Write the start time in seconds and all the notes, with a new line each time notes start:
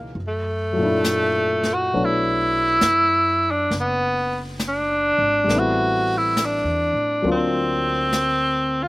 Already playing: C#2 B2 E3 G#3 C#4 D#4
0.15 F#2, brush sweep
0.27 A3
0.73 F#3 A3
0.78 A#2 D4
0.84 E4
1.04 snare, hi-hat pedal
1.63 snare
1.74 F#4
1.93 B1 F#3 A3 B3 D4 C#5, brush sweep
2.05 E4
2.81 F#2, snare, hi-hat pedal
3.51 D4
3.71 F#1, brush sweep, snare
3.80 B3
4.59 snare, hi-hat pedal
4.68 D4
5.18 G#1
5.44 A1 G3 A3
5.49 B3 C4, brush sweep, snare
5.55 E4 F#4
6.18 E4
6.37 snare, hi-hat pedal
6.45 D4
6.64 E2
6.93 A2
7.22 D2 F#3 A#3 C4, brush sweep
7.27 D4 F4
7.31 C4
8.13 snare, hi-hat pedal
8.83 F4